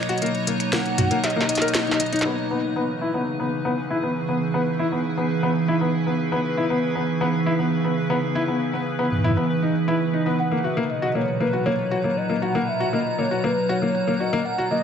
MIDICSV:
0, 0, Header, 1, 6, 480
1, 0, Start_track
1, 0, Tempo, 508475
1, 207, Time_signature, 4, 2, 24, 8
1, 14002, End_track
2, 0, Start_track
2, 0, Title_t, "Soft synth lead"
2, 0, Program_c, 0, 80
2, 0, Note_on_c, 0, 75, 88
2, 447, Note_off_c, 0, 75, 0
2, 687, Note_on_c, 0, 78, 114
2, 1167, Note_on_c, 0, 75, 100
2, 1181, Note_off_c, 0, 78, 0
2, 1887, Note_off_c, 0, 75, 0
2, 9807, Note_on_c, 0, 78, 109
2, 10047, Note_on_c, 0, 76, 101
2, 10061, Note_off_c, 0, 78, 0
2, 10286, Note_on_c, 0, 75, 105
2, 10300, Note_off_c, 0, 76, 0
2, 10526, Note_on_c, 0, 73, 93
2, 10540, Note_off_c, 0, 75, 0
2, 10765, Note_on_c, 0, 71, 95
2, 10779, Note_off_c, 0, 73, 0
2, 10998, Note_off_c, 0, 71, 0
2, 11004, Note_on_c, 0, 73, 104
2, 11485, Note_on_c, 0, 75, 95
2, 11499, Note_off_c, 0, 73, 0
2, 11725, Note_on_c, 0, 78, 105
2, 11739, Note_off_c, 0, 75, 0
2, 11965, Note_on_c, 0, 76, 98
2, 11979, Note_off_c, 0, 78, 0
2, 12205, Note_on_c, 0, 75, 96
2, 12219, Note_off_c, 0, 76, 0
2, 12445, Note_on_c, 0, 73, 88
2, 12459, Note_off_c, 0, 75, 0
2, 12685, Note_on_c, 0, 71, 88
2, 12699, Note_off_c, 0, 73, 0
2, 12925, Note_on_c, 0, 73, 98
2, 12939, Note_off_c, 0, 71, 0
2, 13405, Note_on_c, 0, 75, 90
2, 13419, Note_off_c, 0, 73, 0
2, 13639, Note_off_c, 0, 75, 0
2, 13645, Note_on_c, 0, 78, 99
2, 13753, Note_off_c, 0, 78, 0
2, 13885, Note_on_c, 0, 75, 104
2, 14002, Note_off_c, 0, 75, 0
2, 14002, End_track
3, 0, Start_track
3, 0, Title_t, "Synth texture"
3, 0, Program_c, 1, 99
3, 0, Note_on_c, 1, 73, 89
3, 2127, Note_on_c, 1, 71, 84
3, 2136, Note_off_c, 1, 73, 0
3, 14002, Note_off_c, 1, 71, 0
3, 14002, End_track
4, 0, Start_track
4, 0, Title_t, "Felt piano"
4, 0, Program_c, 2, 0
4, 86, Note_on_c, 2, 66, 106
4, 138, Note_off_c, 2, 66, 0
4, 207, Note_on_c, 2, 58, 83
4, 258, Note_off_c, 2, 58, 0
4, 447, Note_on_c, 2, 58, 76
4, 498, Note_off_c, 2, 58, 0
4, 686, Note_on_c, 2, 58, 102
4, 738, Note_off_c, 2, 58, 0
4, 926, Note_on_c, 2, 66, 102
4, 978, Note_off_c, 2, 66, 0
4, 1046, Note_on_c, 2, 58, 79
4, 1098, Note_off_c, 2, 58, 0
4, 1286, Note_on_c, 2, 58, 78
4, 1338, Note_off_c, 2, 58, 0
4, 1406, Note_on_c, 2, 75, 76
4, 1492, Note_off_c, 2, 75, 0
4, 1526, Note_on_c, 2, 70, 104
4, 1578, Note_off_c, 2, 70, 0
4, 1766, Note_on_c, 2, 63, 78
4, 1880, Note_off_c, 2, 63, 0
4, 1887, Note_on_c, 2, 75, 84
4, 1938, Note_off_c, 2, 75, 0
4, 2006, Note_on_c, 2, 63, 107
4, 2092, Note_off_c, 2, 63, 0
4, 2127, Note_on_c, 2, 59, 74
4, 2178, Note_off_c, 2, 59, 0
4, 2367, Note_on_c, 2, 59, 69
4, 2418, Note_off_c, 2, 59, 0
4, 2606, Note_on_c, 2, 59, 90
4, 2658, Note_off_c, 2, 59, 0
4, 2846, Note_on_c, 2, 64, 89
4, 2898, Note_off_c, 2, 64, 0
4, 2966, Note_on_c, 2, 59, 71
4, 3018, Note_off_c, 2, 59, 0
4, 3206, Note_on_c, 2, 59, 75
4, 3258, Note_off_c, 2, 59, 0
4, 3445, Note_on_c, 2, 59, 94
4, 3498, Note_off_c, 2, 59, 0
4, 3685, Note_on_c, 2, 64, 92
4, 3738, Note_off_c, 2, 64, 0
4, 3805, Note_on_c, 2, 59, 71
4, 3858, Note_off_c, 2, 59, 0
4, 4046, Note_on_c, 2, 59, 74
4, 4098, Note_off_c, 2, 59, 0
4, 4286, Note_on_c, 2, 59, 94
4, 4338, Note_off_c, 2, 59, 0
4, 4525, Note_on_c, 2, 64, 89
4, 4577, Note_off_c, 2, 64, 0
4, 4646, Note_on_c, 2, 59, 69
4, 4698, Note_off_c, 2, 59, 0
4, 4885, Note_on_c, 2, 59, 72
4, 4937, Note_off_c, 2, 59, 0
4, 5125, Note_on_c, 2, 59, 98
4, 5177, Note_off_c, 2, 59, 0
4, 5365, Note_on_c, 2, 64, 97
4, 5417, Note_off_c, 2, 64, 0
4, 5486, Note_on_c, 2, 59, 75
4, 5538, Note_off_c, 2, 59, 0
4, 5726, Note_on_c, 2, 59, 73
4, 5778, Note_off_c, 2, 59, 0
4, 5966, Note_on_c, 2, 59, 99
4, 6018, Note_off_c, 2, 59, 0
4, 6206, Note_on_c, 2, 64, 92
4, 6258, Note_off_c, 2, 64, 0
4, 6326, Note_on_c, 2, 59, 72
4, 6378, Note_off_c, 2, 59, 0
4, 6566, Note_on_c, 2, 59, 67
4, 6618, Note_off_c, 2, 59, 0
4, 6806, Note_on_c, 2, 59, 96
4, 6858, Note_off_c, 2, 59, 0
4, 7046, Note_on_c, 2, 64, 97
4, 7098, Note_off_c, 2, 64, 0
4, 7165, Note_on_c, 2, 59, 71
4, 7217, Note_off_c, 2, 59, 0
4, 7405, Note_on_c, 2, 59, 76
4, 7457, Note_off_c, 2, 59, 0
4, 7645, Note_on_c, 2, 59, 98
4, 7697, Note_off_c, 2, 59, 0
4, 7886, Note_on_c, 2, 64, 97
4, 7938, Note_off_c, 2, 64, 0
4, 8005, Note_on_c, 2, 59, 69
4, 8058, Note_off_c, 2, 59, 0
4, 8246, Note_on_c, 2, 59, 68
4, 8298, Note_off_c, 2, 59, 0
4, 8486, Note_on_c, 2, 59, 91
4, 8538, Note_off_c, 2, 59, 0
4, 8725, Note_on_c, 2, 64, 96
4, 8777, Note_off_c, 2, 64, 0
4, 8846, Note_on_c, 2, 59, 77
4, 8898, Note_off_c, 2, 59, 0
4, 9085, Note_on_c, 2, 63, 73
4, 9172, Note_off_c, 2, 63, 0
4, 9325, Note_on_c, 2, 64, 94
4, 9412, Note_off_c, 2, 64, 0
4, 9565, Note_on_c, 2, 63, 70
4, 9680, Note_off_c, 2, 63, 0
4, 9685, Note_on_c, 2, 59, 75
4, 9772, Note_off_c, 2, 59, 0
4, 9925, Note_on_c, 2, 58, 72
4, 9977, Note_off_c, 2, 58, 0
4, 10045, Note_on_c, 2, 66, 69
4, 10132, Note_off_c, 2, 66, 0
4, 10166, Note_on_c, 2, 58, 95
4, 10218, Note_off_c, 2, 58, 0
4, 10405, Note_on_c, 2, 66, 92
4, 10457, Note_off_c, 2, 66, 0
4, 10526, Note_on_c, 2, 58, 74
4, 10578, Note_off_c, 2, 58, 0
4, 10765, Note_on_c, 2, 58, 79
4, 10817, Note_off_c, 2, 58, 0
4, 10885, Note_on_c, 2, 66, 74
4, 10972, Note_off_c, 2, 66, 0
4, 11005, Note_on_c, 2, 58, 94
4, 11057, Note_off_c, 2, 58, 0
4, 11245, Note_on_c, 2, 66, 90
4, 11298, Note_off_c, 2, 66, 0
4, 11366, Note_on_c, 2, 58, 68
4, 11418, Note_off_c, 2, 58, 0
4, 11606, Note_on_c, 2, 58, 75
4, 11658, Note_off_c, 2, 58, 0
4, 11726, Note_on_c, 2, 66, 78
4, 11812, Note_off_c, 2, 66, 0
4, 11846, Note_on_c, 2, 58, 90
4, 11898, Note_off_c, 2, 58, 0
4, 12086, Note_on_c, 2, 66, 93
4, 12138, Note_off_c, 2, 66, 0
4, 12206, Note_on_c, 2, 58, 76
4, 12258, Note_off_c, 2, 58, 0
4, 12446, Note_on_c, 2, 58, 73
4, 12498, Note_off_c, 2, 58, 0
4, 12565, Note_on_c, 2, 66, 73
4, 12652, Note_off_c, 2, 66, 0
4, 12686, Note_on_c, 2, 58, 92
4, 12738, Note_off_c, 2, 58, 0
4, 12925, Note_on_c, 2, 66, 94
4, 12978, Note_off_c, 2, 66, 0
4, 13046, Note_on_c, 2, 58, 71
4, 13098, Note_off_c, 2, 58, 0
4, 13285, Note_on_c, 2, 58, 75
4, 13338, Note_off_c, 2, 58, 0
4, 13406, Note_on_c, 2, 66, 75
4, 13492, Note_off_c, 2, 66, 0
4, 13525, Note_on_c, 2, 58, 100
4, 13578, Note_off_c, 2, 58, 0
4, 13766, Note_on_c, 2, 66, 100
4, 13818, Note_off_c, 2, 66, 0
4, 13886, Note_on_c, 2, 58, 72
4, 13938, Note_off_c, 2, 58, 0
4, 14002, End_track
5, 0, Start_track
5, 0, Title_t, "Ambient pad"
5, 0, Program_c, 3, 92
5, 0, Note_on_c, 3, 47, 88
5, 0, Note_on_c, 3, 54, 82
5, 0, Note_on_c, 3, 58, 77
5, 0, Note_on_c, 3, 63, 74
5, 0, Note_on_c, 3, 82, 77
5, 2127, Note_off_c, 3, 47, 0
5, 2127, Note_off_c, 3, 54, 0
5, 2127, Note_off_c, 3, 58, 0
5, 2127, Note_on_c, 3, 49, 83
5, 2265, Note_on_c, 3, 52, 89
5, 2533, Note_on_c, 3, 59, 80
5, 2728, Note_on_c, 3, 68, 94
5, 3668, Note_off_c, 3, 82, 0
5, 9805, Note_on_c, 3, 47, 82
5, 9807, Note_off_c, 3, 49, 0
5, 9807, Note_off_c, 3, 52, 0
5, 9808, Note_off_c, 3, 59, 0
5, 9868, Note_on_c, 3, 46, 95
5, 9901, Note_on_c, 3, 54, 82
5, 10201, Note_on_c, 3, 82, 86
5, 10592, Note_off_c, 3, 68, 0
5, 14002, Note_off_c, 3, 46, 0
5, 14002, Note_off_c, 3, 47, 0
5, 14002, Note_off_c, 3, 54, 0
5, 14002, Note_off_c, 3, 63, 0
5, 14002, Note_off_c, 3, 82, 0
5, 14002, End_track
6, 0, Start_track
6, 0, Title_t, "Drums"
6, 26, Note_on_c, 9, 26, 81
6, 86, Note_on_c, 9, 42, 49
6, 120, Note_off_c, 9, 26, 0
6, 166, Note_off_c, 9, 42, 0
6, 166, Note_on_c, 9, 42, 41
6, 207, Note_off_c, 9, 42, 0
6, 207, Note_on_c, 9, 42, 57
6, 246, Note_off_c, 9, 42, 0
6, 246, Note_on_c, 9, 42, 34
6, 327, Note_off_c, 9, 42, 0
6, 327, Note_on_c, 9, 42, 29
6, 421, Note_off_c, 9, 42, 0
6, 446, Note_on_c, 9, 42, 96
6, 540, Note_off_c, 9, 42, 0
6, 566, Note_on_c, 9, 26, 37
6, 566, Note_on_c, 9, 42, 55
6, 661, Note_off_c, 9, 26, 0
6, 661, Note_off_c, 9, 42, 0
6, 687, Note_on_c, 9, 40, 119
6, 687, Note_on_c, 9, 42, 54
6, 781, Note_off_c, 9, 40, 0
6, 781, Note_off_c, 9, 42, 0
6, 807, Note_on_c, 9, 42, 27
6, 901, Note_off_c, 9, 42, 0
6, 926, Note_on_c, 9, 42, 95
6, 926, Note_on_c, 9, 45, 80
6, 956, Note_off_c, 9, 45, 0
6, 956, Note_on_c, 9, 45, 66
6, 986, Note_off_c, 9, 45, 0
6, 986, Note_on_c, 9, 45, 55
6, 1017, Note_off_c, 9, 45, 0
6, 1017, Note_on_c, 9, 45, 45
6, 1021, Note_off_c, 9, 42, 0
6, 1046, Note_on_c, 9, 42, 54
6, 1111, Note_off_c, 9, 45, 0
6, 1141, Note_off_c, 9, 42, 0
6, 1166, Note_on_c, 9, 38, 71
6, 1166, Note_on_c, 9, 42, 53
6, 1227, Note_off_c, 9, 42, 0
6, 1227, Note_on_c, 9, 42, 27
6, 1261, Note_off_c, 9, 38, 0
6, 1321, Note_off_c, 9, 42, 0
6, 1327, Note_on_c, 9, 38, 79
6, 1407, Note_on_c, 9, 42, 89
6, 1421, Note_off_c, 9, 38, 0
6, 1466, Note_off_c, 9, 42, 0
6, 1466, Note_on_c, 9, 42, 72
6, 1486, Note_on_c, 9, 38, 82
6, 1526, Note_off_c, 9, 42, 0
6, 1526, Note_on_c, 9, 42, 60
6, 1580, Note_off_c, 9, 38, 0
6, 1586, Note_off_c, 9, 42, 0
6, 1586, Note_on_c, 9, 42, 51
6, 1646, Note_off_c, 9, 42, 0
6, 1646, Note_on_c, 9, 38, 89
6, 1646, Note_on_c, 9, 40, 117
6, 1646, Note_on_c, 9, 42, 54
6, 1740, Note_off_c, 9, 38, 0
6, 1740, Note_off_c, 9, 40, 0
6, 1740, Note_off_c, 9, 42, 0
6, 1767, Note_on_c, 9, 42, 12
6, 1807, Note_on_c, 9, 38, 96
6, 1827, Note_off_c, 9, 42, 0
6, 1827, Note_on_c, 9, 42, 15
6, 1886, Note_off_c, 9, 42, 0
6, 1886, Note_on_c, 9, 42, 91
6, 1901, Note_off_c, 9, 38, 0
6, 1947, Note_off_c, 9, 42, 0
6, 1947, Note_on_c, 9, 42, 22
6, 2006, Note_off_c, 9, 42, 0
6, 2006, Note_on_c, 9, 42, 50
6, 2037, Note_off_c, 9, 42, 0
6, 2037, Note_on_c, 9, 42, 42
6, 2067, Note_off_c, 9, 42, 0
6, 2067, Note_on_c, 9, 42, 34
6, 2087, Note_on_c, 9, 38, 104
6, 2161, Note_off_c, 9, 42, 0
6, 2182, Note_off_c, 9, 38, 0
6, 2487, Note_on_c, 9, 42, 50
6, 2581, Note_off_c, 9, 42, 0
6, 2606, Note_on_c, 9, 42, 63
6, 2701, Note_off_c, 9, 42, 0
6, 2966, Note_on_c, 9, 42, 50
6, 3061, Note_off_c, 9, 42, 0
6, 3086, Note_on_c, 9, 42, 61
6, 3181, Note_off_c, 9, 42, 0
6, 3206, Note_on_c, 9, 42, 37
6, 3301, Note_off_c, 9, 42, 0
6, 3447, Note_on_c, 9, 42, 52
6, 3541, Note_off_c, 9, 42, 0
6, 3567, Note_on_c, 9, 42, 66
6, 3661, Note_off_c, 9, 42, 0
6, 3686, Note_on_c, 9, 42, 33
6, 3781, Note_off_c, 9, 42, 0
6, 3926, Note_on_c, 9, 42, 52
6, 4020, Note_off_c, 9, 42, 0
6, 4046, Note_on_c, 9, 42, 63
6, 4140, Note_off_c, 9, 42, 0
6, 4406, Note_on_c, 9, 42, 51
6, 4500, Note_off_c, 9, 42, 0
6, 4525, Note_on_c, 9, 42, 64
6, 4620, Note_off_c, 9, 42, 0
6, 4885, Note_on_c, 9, 42, 51
6, 4979, Note_off_c, 9, 42, 0
6, 5005, Note_on_c, 9, 42, 65
6, 5099, Note_off_c, 9, 42, 0
6, 5365, Note_on_c, 9, 42, 52
6, 5460, Note_off_c, 9, 42, 0
6, 5486, Note_on_c, 9, 42, 66
6, 5580, Note_off_c, 9, 42, 0
6, 5606, Note_on_c, 9, 42, 35
6, 5701, Note_off_c, 9, 42, 0
6, 5846, Note_on_c, 9, 42, 51
6, 5940, Note_off_c, 9, 42, 0
6, 5966, Note_on_c, 9, 42, 65
6, 6060, Note_off_c, 9, 42, 0
6, 6326, Note_on_c, 9, 42, 51
6, 6420, Note_off_c, 9, 42, 0
6, 6446, Note_on_c, 9, 42, 62
6, 6540, Note_off_c, 9, 42, 0
6, 6805, Note_on_c, 9, 42, 45
6, 6846, Note_off_c, 9, 42, 0
6, 6846, Note_on_c, 9, 42, 39
6, 6886, Note_off_c, 9, 42, 0
6, 6886, Note_on_c, 9, 42, 31
6, 6926, Note_off_c, 9, 42, 0
6, 6926, Note_on_c, 9, 42, 63
6, 7006, Note_off_c, 9, 42, 0
6, 7006, Note_on_c, 9, 42, 17
6, 7046, Note_off_c, 9, 42, 0
6, 7046, Note_on_c, 9, 42, 36
6, 7140, Note_off_c, 9, 42, 0
6, 7286, Note_on_c, 9, 42, 50
6, 7380, Note_off_c, 9, 42, 0
6, 7406, Note_on_c, 9, 42, 65
6, 7500, Note_off_c, 9, 42, 0
6, 7526, Note_on_c, 9, 42, 34
6, 7620, Note_off_c, 9, 42, 0
6, 7766, Note_on_c, 9, 42, 50
6, 7860, Note_off_c, 9, 42, 0
6, 7887, Note_on_c, 9, 42, 60
6, 7981, Note_off_c, 9, 42, 0
6, 8246, Note_on_c, 9, 42, 47
6, 8341, Note_off_c, 9, 42, 0
6, 8366, Note_on_c, 9, 42, 61
6, 8460, Note_off_c, 9, 42, 0
6, 8606, Note_on_c, 9, 45, 34
6, 8665, Note_off_c, 9, 45, 0
6, 8665, Note_on_c, 9, 45, 43
6, 8725, Note_off_c, 9, 45, 0
6, 8725, Note_on_c, 9, 42, 45
6, 8725, Note_on_c, 9, 45, 51
6, 8785, Note_off_c, 9, 45, 0
6, 8785, Note_on_c, 9, 45, 60
6, 8820, Note_off_c, 9, 42, 0
6, 8845, Note_on_c, 9, 42, 61
6, 8880, Note_off_c, 9, 45, 0
6, 8940, Note_off_c, 9, 42, 0
6, 9206, Note_on_c, 9, 42, 50
6, 9300, Note_off_c, 9, 42, 0
6, 9326, Note_on_c, 9, 42, 61
6, 9420, Note_off_c, 9, 42, 0
6, 9446, Note_on_c, 9, 42, 14
6, 9471, Note_off_c, 9, 42, 0
6, 9471, Note_on_c, 9, 42, 18
6, 9494, Note_off_c, 9, 42, 0
6, 9494, Note_on_c, 9, 42, 21
6, 9518, Note_off_c, 9, 42, 0
6, 9518, Note_on_c, 9, 42, 24
6, 9542, Note_off_c, 9, 42, 0
6, 9542, Note_on_c, 9, 42, 27
6, 9637, Note_off_c, 9, 42, 0
6, 9806, Note_on_c, 9, 42, 61
6, 9900, Note_off_c, 9, 42, 0
6, 10166, Note_on_c, 9, 42, 46
6, 10261, Note_off_c, 9, 42, 0
6, 10286, Note_on_c, 9, 42, 60
6, 10380, Note_off_c, 9, 42, 0
6, 10646, Note_on_c, 9, 42, 46
6, 10741, Note_off_c, 9, 42, 0
6, 10766, Note_on_c, 9, 42, 58
6, 10860, Note_off_c, 9, 42, 0
6, 10886, Note_on_c, 9, 42, 34
6, 10981, Note_off_c, 9, 42, 0
6, 11126, Note_on_c, 9, 42, 47
6, 11221, Note_off_c, 9, 42, 0
6, 11247, Note_on_c, 9, 42, 60
6, 11341, Note_off_c, 9, 42, 0
6, 11367, Note_on_c, 9, 42, 30
6, 11462, Note_off_c, 9, 42, 0
6, 11607, Note_on_c, 9, 42, 45
6, 11701, Note_off_c, 9, 42, 0
6, 11727, Note_on_c, 9, 42, 62
6, 11821, Note_off_c, 9, 42, 0
6, 12207, Note_on_c, 9, 42, 58
6, 12302, Note_off_c, 9, 42, 0
6, 12567, Note_on_c, 9, 42, 44
6, 12597, Note_off_c, 9, 42, 0
6, 12597, Note_on_c, 9, 42, 36
6, 12627, Note_off_c, 9, 42, 0
6, 12627, Note_on_c, 9, 42, 29
6, 12657, Note_off_c, 9, 42, 0
6, 12657, Note_on_c, 9, 42, 24
6, 12687, Note_off_c, 9, 42, 0
6, 12687, Note_on_c, 9, 42, 59
6, 12781, Note_off_c, 9, 42, 0
6, 12807, Note_on_c, 9, 42, 35
6, 12902, Note_off_c, 9, 42, 0
6, 13047, Note_on_c, 9, 42, 48
6, 13142, Note_off_c, 9, 42, 0
6, 13167, Note_on_c, 9, 42, 61
6, 13261, Note_off_c, 9, 42, 0
6, 13287, Note_on_c, 9, 42, 32
6, 13382, Note_off_c, 9, 42, 0
6, 13527, Note_on_c, 9, 42, 47
6, 13622, Note_off_c, 9, 42, 0
6, 13647, Note_on_c, 9, 42, 64
6, 13742, Note_off_c, 9, 42, 0
6, 14002, End_track
0, 0, End_of_file